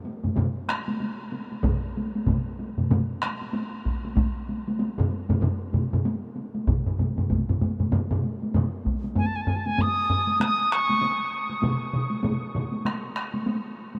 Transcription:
0.05 taiko high
0.24 taiko low-mid, taiko mid, taiko high
0.36 taiko low-mid, taiko mid, taiko high
0.68 taiko rim, taiko high
0.88 taiko high
1.00 taiko high
1.33 taiko high
1.52 taiko high
1.64 taiko, taiko low-mid, taiko mid, taiko high
1.97 taiko high
2.15 taiko high
2.27 taiko, taiko low-mid, taiko mid, taiko high
2.59 taiko high
2.78 taiko low-mid, taiko mid, taiko high
2.91 taiko low-mid, taiko mid, taiko high
3.22 taiko rim, taiko high
3.42 taiko high
3.54 taiko high
3.86 taiko, taiko high
4.05 taiko high
4.17 taiko, taiko high
4.49 taiko high
4.68 taiko high
4.79 taiko high
4.98 taiko low-mid, taiko mid
5.10 taiko high
5.29 taiko low-mid, taiko mid, taiko high
5.41 taiko low-mid, taiko mid, taiko high
5.73 taiko low-mid, taiko mid, taiko high
5.93 taiko low-mid, taiko mid, taiko high
6.05 taiko high
6.36 taiko high
6.55 taiko high
6.67 taiko, taiko low-mid, taiko mid, taiko high
6.86 taiko low-mid, taiko mid
6.99 taiko low-mid, taiko mid, taiko high
7.17 taiko low-mid, taiko mid, taiko high
7.30 taiko, taiko low-mid, taiko mid, taiko high
7.49 taiko low-mid, taiko mid
7.61 taiko low-mid, taiko mid, taiko high
7.80 taiko low-mid, taiko mid, taiko high
7.92 taiko low-mid, taiko mid, taiko high
8.11 taiko low-mid, taiko mid
8.23 taiko high
8.42 taiko high
8.54 taiko low-mid, taiko mid, taiko high
8.85 taiko, taiko high
9.04 taiko high
9.15 G#5, taiko low-mid, taiko high
9.26 A5
9.36 G#5
9.41 A5
9.47 G#5, taiko low-mid
9.56 A5
9.66 G#5, taiko high
9.78 D#6, taiko low-mid, taiko high
10.10 taiko low-mid
10.27 taiko high
10.40 D#6, taiko rim, taiko high
10.72 C#6, taiko rim
10.89 taiko high
11.02 taiko high
11.49 taiko high
11.62 taiko mid, taiko high
11.93 taiko mid
12.11 taiko high
12.23 taiko mid, taiko high
12.55 taiko mid
12.72 taiko high
12.85 taiko rim, taiko high
13.17 taiko rim
13.34 taiko high
13.46 taiko high
13.95 taiko high

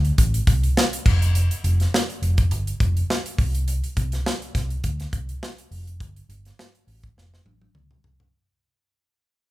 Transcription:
Already playing: D2
0.05 closed hi-hat
0.18 A1, kick, closed hi-hat
0.34 closed hi-hat
0.47 C2, kick, closed hi-hat
0.63 closed hi-hat
0.77 snare
0.93 closed hi-hat
1.06 F1, kick, crash
1.22 closed hi-hat
1.35 closed hi-hat
1.51 closed hi-hat
1.64 F1, closed hi-hat
1.80 snare, closed hi-hat
1.94 snare
2.10 closed hi-hat
2.22 F1, closed hi-hat
2.38 kick, closed hi-hat
2.51 G1, closed hi-hat
2.67 closed hi-hat
2.80 F1, kick, closed hi-hat
2.97 closed hi-hat
3.10 snare
3.26 closed hi-hat
3.38 C2, kick, open hi-hat
3.55 closed hi-hat
3.68 closed hi-hat
3.84 closed hi-hat
3.97 C2, kick, closed hi-hat
4.12 snare, closed hi-hat
4.26 snare
4.42 closed hi-hat
4.55 C2, kick, snare, closed hi-hat
4.70 closed hi-hat
4.84 D2, kick, closed hi-hat
5.00 snare, closed hi-hat
5.13 C2, kick, closed hi-hat
5.29 closed hi-hat
5.43 snare
5.58 closed hi-hat
5.71 F1, open hi-hat
5.87 closed hi-hat
6.00 G1, kick, closed hi-hat
6.16 closed hi-hat
6.29 G1, closed hi-hat
6.45 snare, closed hi-hat
6.59 snare
6.75 closed hi-hat
6.87 A1, open hi-hat
7.03 kick, closed hi-hat
7.17 F1, snare
7.34 snare
7.45 A1, high tom
7.61 high tom
7.75 C#2, mid tom
7.91 mid tom
8.04 C2, floor tom
8.20 floor tom

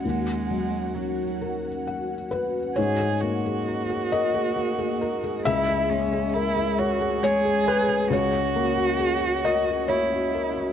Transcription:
Already playing: C#4 F#4 F#5
0.04 D#2 G#3
0.50 F#3
0.95 F#3 F#4
1.41 A#4
1.87 F#5
2.31 F#4 B4
2.76 G#2 A#3 G#4 C#5 D#5
3.00 G#4
3.21 A#3 F#4
3.46 G#4
3.68 A#4
3.90 G#4
4.12 A#4 D#5
4.34 G#4
4.56 A#3
4.79 G#4
5.01 A#4
5.24 G#4
5.45 C#2 G#3 E4 C#5 E5
5.69 G#4
5.90 G#3 C#4
6.13 G#4
6.34 E4 A#4
6.57 G#4
6.79 F#4 C#5
7.01 G#4
7.22 G#3 G#4 C#5
7.45 G#4
7.66 B4 C#5
7.89 G#4
8.10 C#2 C#4 F#4 C#5
8.33 F#4
8.56 A#3
8.77 F#4
8.99 G#4
9.22 F#4
9.45 A#4 D#5
9.67 F#4
9.88 A#3 E4 C#5
10.12 F#4
10.34 A#4
10.57 F#4

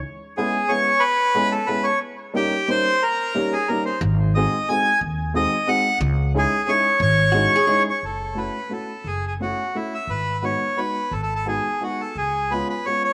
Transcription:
0.37 G#3 B3 C#4 E4 G#4
0.69 G#3 B3 C#4 E4 G#4 C#5
1.00 B4
1.35 G#3 B3 C#4 E4 G#4
1.52 A4
1.67 G#3 B3 C#4 E4 G#4 B4
1.84 C#5
2.34 G3 A#3 C#4 D#4 G4
2.68 G3 A#3 C#4 D#4 G4 C5
3.03 A#4
3.34 G3 A#3 C#4 D#4 G4
3.53 G#4
3.68 G3 A#3 C#4 D#4 G4 A#4
3.85 C5
4.01 G#1
4.35 G#3 C4 D#4 F#4 G#4 D#5
4.69 G#3 C4 D#4 F#4 G#4 G#5
5.01 D#2
5.34 G#3 C4 D#4 F#4 G#4 D#5
5.67 G#3 C4 D#4 F#4 G#4 F#5
6.01 C#2
6.35 G#3 C#4 D#4 E4 G#4
6.67 G#3 C#4 D#4 E4 G#4 C#5
7.00 G#1 C#5
7.32 G#3 C#4 D#4 E4 F#4 G#4
7.56 G#4
7.67 G#3 C#4 D#4 E4 G#4
7.90 C#5
8.02 F#1 A4
8.35 A3 C#4 E4 F#4 B4
8.69 A3 C#4 E4 F#4 A4
9.04 F#1 G#4
9.27 G#4
9.40 A3 C#4 E4 F#4
9.75 A3 C#4 E4 F#4
9.94 E5
10.07 G#1 B4
10.42 G#3 B3 D#4 F#4 C#5
10.76 G#3 B3 D#4 F#4 B4
11.11 G#1 A4
11.23 A4
11.35 A4
11.45 G#3 B3 D#4 F#4 G#4
11.81 G#3 B3 D#4 F#4
12.01 A4
12.15 C#2 G#4
12.51 G#3 B3 C#4 F4 B4
12.69 B4
12.86 G#3 B3 C#4 F4 C#5
13.04 C#5

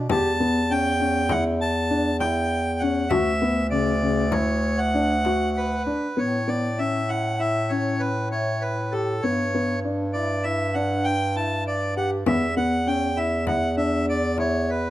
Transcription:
0.09 E2 G4 A5, frame drum
0.40 B3
0.70 C#4 G5, frame drum
1.00 C#4
1.29 E4 F#5, frame drum
1.61 A5
1.90 D4, frame drum
2.20 E4 G5, frame drum
2.79 C#4 F#5
3.09 D2 F#4 E5, frame drum
3.42 B3
3.71 C#3 D5
4.01 C#3, frame drum
4.31 E4 C#5, frame drum
4.78 F#5
4.94 D4
5.25 F#4, frame drum
5.56 B4, frame drum
5.86 D4, frame drum
6.16 A2 B3 C#5
6.48 B3 D5
6.79 C#4 E5
7.09 E4 F#5
7.40 E4 E5
7.69 C#4 C#5
8.00 B4
8.32 E4 C#5
8.61 B4
8.92 G4 A4
9.22 G2 B3 C#5
9.54 B3
9.84 D4
10.13 E4 D5
10.44 E4 E5
10.74 D4 F#5
11.04 G5
11.36 E4 A5
11.67 D5
11.97 G4 F#5
12.26 E2 B3 E5, frame drum
12.57 B3 F#5
12.86 C#4 G5
13.17 E4 E5
13.46 E4 F#5, frame drum
13.77 D4 E5
14.08 D5, frame drum
14.37 E4 C#5, frame drum
14.70 B4

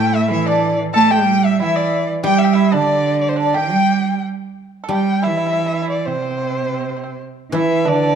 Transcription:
Already playing: A2 E3 A3 G4 G5
0.11 E4 E5
0.15 E5
0.28 E3 E4 E5
0.46 D4 D5
0.94 A3 A4 A5
1.10 G3 G4 G5
1.44 E5
1.60 E3 E4 E5 G5
1.76 D5
2.24 G3 G4 G5
2.38 E5
2.44 G5
2.54 E4 E5
2.72 D3 D4 D5
3.21 D5
3.29 C5
3.36 D4 D5
3.54 G3 G4 G5
4.84 A4
4.89 G3 G4 G5
5.23 E3 E4 E5
5.30 E4
5.37 E4
5.46 E4
5.53 E4
5.60 E4
5.66 E4
5.74 E4
5.82 E4
5.90 E4 D5
6.06 C3 C4 C5
6.15 C4
6.22 C4
6.30 C4
6.38 C4
6.43 C4
6.50 C4
6.58 C4
6.67 C4
6.74 C4
6.80 C4
6.89 C4
6.97 C4
7.04 C4
7.51 E3 E4
7.57 E5
7.85 D3 D4 D5
7.93 D4
8.03 D4
8.10 D4

